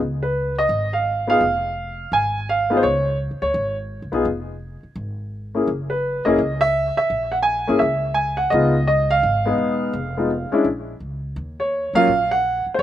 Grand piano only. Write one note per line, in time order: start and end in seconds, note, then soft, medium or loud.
0.23 0.55 B4 medium
0.58 0.94 D#5 medium
0.93 1.28 F5 medium
1.27 1.39 B3 medium
1.27 1.39 D#4 soft
1.27 1.40 F4 soft
1.27 1.40 G#4 medium
1.27 2.15 F5 medium
2.13 2.49 G#5 medium
2.49 2.80 F5 medium
2.70 2.82 B3 medium
2.70 2.82 D#4 medium
2.70 2.82 F4 medium
2.70 2.82 G#4 medium
2.77 2.83 C5 medium
2.83 3.16 C#5 medium
3.42 3.75 C#5 medium
4.12 4.24 B3 medium
4.12 4.24 D#4 medium
4.12 4.25 F4 medium
4.12 4.25 G#4 medium
5.55 5.66 A#3 soft
5.55 5.66 C#4 soft
5.55 5.67 E4 soft
5.55 5.67 G#4 medium
5.90 6.23 B4 medium
6.25 6.37 A#3 medium
6.25 6.38 C#4 medium
6.25 6.38 E4 medium
6.25 6.38 G#4 medium
6.25 6.58 D#5 medium
6.61 6.94 E5 medium
6.97 7.34 E5 medium
7.32 7.37 F#5 medium
7.43 7.77 G#5 medium
7.67 7.79 A#3 medium
7.67 7.80 C#4 medium
7.67 7.80 E4 medium
7.67 7.80 G#4 medium
7.79 8.17 E5 medium
8.14 8.36 G#5 medium
8.37 8.50 F#5 medium
8.50 8.72 G#3 soft
8.50 8.73 B3 medium
8.50 8.73 D#4 soft
8.50 8.73 F4 medium
8.50 8.86 D#5 medium
8.87 9.11 D#5 medium
9.11 10.49 F5 medium
9.45 9.92 G#3 medium
9.45 9.92 B3 medium
9.45 9.92 D#4 soft
9.45 9.93 G#4 medium
10.17 10.29 G#3 medium
10.17 10.29 B3 soft
10.17 10.29 D#4 soft
10.17 10.30 F4 medium
10.52 10.64 G#3 medium
10.52 10.64 C#4 medium
10.52 10.64 D4 medium
10.52 10.65 E4 medium
11.60 11.92 C#5 medium
11.95 12.07 F#3 medium
11.95 12.07 A#3 medium
11.95 12.07 C#4 medium
11.95 12.07 F4 medium
11.95 12.28 F5 loud
12.31 12.64 F#5 medium
12.74 12.79 C5 medium
12.79 12.82 C#5 medium